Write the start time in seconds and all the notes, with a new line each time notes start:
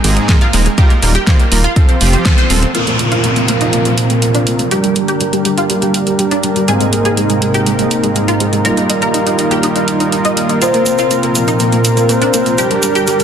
0.04 G#1 G#2 G#3 A#3 C4 D#4 G#4, open hi-hat
0.17 G#3, closed hi-hat
0.29 G#2 G#3 A#3 C4 D#4 A#4, kick, snare, closed hi-hat
0.41 F4, closed hi-hat
0.53 D#1 G#3 A#3 C4 D#4 A#4, open hi-hat
0.66 G#3, closed hi-hat
0.78 G3 A#3 D#4 F4 G4 A#4, kick, closed hi-hat
0.90 A#3, closed hi-hat
1.02 D#1 G3 A#3 D#4 F4 A#4, open hi-hat
1.15 G4, closed hi-hat
1.27 G3 A#3 D#4 F4 C5, kick, snare, closed hi-hat
1.39 A#3, closed hi-hat
1.52 D#1 G3 A#3 D#4 F4 A#4, open hi-hat
1.64 F4, closed hi-hat
1.76 F3 C4 F4 A4, kick, closed hi-hat
1.89 C4, closed hi-hat
2.01 F1 F3 C4 F4 G4, open hi-hat
2.13 C4, closed hi-hat
2.25 F3 C4 A4, kick, snare, closed hi-hat
2.38 C5, closed hi-hat
2.50 D#1 A#2 C4 F4 A4, open hi-hat
2.62 C4, closed hi-hat
2.75 A#2 C3 F3 A#3 C4 F4 A#4, closed hi-hat, downlifter
2.87 A#3, closed hi-hat
2.99 A#3, closed hi-hat
3.12 F4, closed hi-hat
3.24 A#3, closed hi-hat
3.36 A#3, closed hi-hat
3.48 A#3, closed hi-hat
3.61 D#4, closed hi-hat
3.73 A#3, closed hi-hat
3.85 A#3, closed hi-hat
3.98 closed hi-hat
4.10 A#3, closed hi-hat
4.22 A#3, closed hi-hat
4.35 D4, closed hi-hat
4.47 A#3, closed hi-hat
4.59 A#3, closed hi-hat
4.71 D3 G3 D4 G4 A#4, closed hi-hat
4.84 G3, closed hi-hat
4.96 G3, closed hi-hat
5.08 G4, closed hi-hat
5.21 G3, closed hi-hat
5.33 G3, closed hi-hat
5.45 G3, closed hi-hat
5.58 F4, closed hi-hat
5.70 G3, closed hi-hat
5.82 G3, closed hi-hat
5.94 closed hi-hat
6.07 G3, closed hi-hat
6.19 G3, closed hi-hat
6.31 D4, closed hi-hat
6.43 G3, closed hi-hat
6.56 G3, closed hi-hat
6.68 G#2 C3 G#3 A#3 C4 D#4 G#4 A#4, closed hi-hat
6.80 G#3, closed hi-hat
6.93 G#3, closed hi-hat
7.05 G#4, closed hi-hat
7.17 G#3, closed hi-hat
7.30 G#3, closed hi-hat
7.42 G#3, closed hi-hat
7.54 G4, closed hi-hat
7.66 G#3, closed hi-hat
7.79 G#3, closed hi-hat
7.91 closed hi-hat
8.03 G#3, closed hi-hat
8.16 G#3, closed hi-hat
8.28 F4, closed hi-hat
8.40 G#3, closed hi-hat
8.53 G#3, closed hi-hat
8.65 D#3 G3 A#3 D#4 F4 A#4, closed hi-hat
8.77 D#4, closed hi-hat
8.89 D#4, closed hi-hat
9.02 A#4, closed hi-hat
9.14 D#4, closed hi-hat
9.26 D#4, closed hi-hat
9.39 D#4, closed hi-hat
9.51 G4, closed hi-hat
9.63 D#4, closed hi-hat
9.76 D#4, closed hi-hat
9.88 closed hi-hat
10.00 D#4, closed hi-hat
10.12 D#4, closed hi-hat
10.25 D#4, closed hi-hat
10.37 D#4, closed hi-hat
10.49 D#4, closed hi-hat
10.62 A#2 C3 F3 C4 F4 A#4 C5, closed hi-hat, shaker
10.74 A#3, closed hi-hat
10.86 A#3, closed hi-hat, shaker
10.98 F4, closed hi-hat, shaker
11.11 A#3, closed hi-hat, shaker
11.23 A#3, closed hi-hat
11.35 A#3 A#4, closed hi-hat, shaker
11.48 D#4, closed hi-hat, shaker
11.59 A#3, closed hi-hat, shaker
11.72 A#3, closed hi-hat
11.85 closed hi-hat, shaker
11.97 A#3, closed hi-hat, shaker
12.09 A#3 C5, closed hi-hat, shaker
12.22 D4, closed hi-hat
12.34 A#3, closed hi-hat, shaker
12.46 A#3, closed hi-hat, shaker
12.58 D3 G3 D4 G4 A#4, closed hi-hat, shaker
12.71 G3, closed hi-hat
12.83 G3 A#4, closed hi-hat, shaker
12.95 G4, closed hi-hat, shaker
13.07 G3, closed hi-hat, shaker
13.20 G3, closed hi-hat, shaker